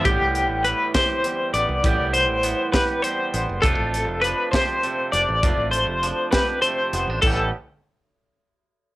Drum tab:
CC |------|------|------|------|
HH |xxxxxx|xxxxxx|xxxxxx|xxxxxx|
SD |---o--|---o--|---o--|---o--|
BD |o--o--|o--o--|o--o--|o--o--|

CC |x-----|
HH |------|
SD |------|
BD |o-----|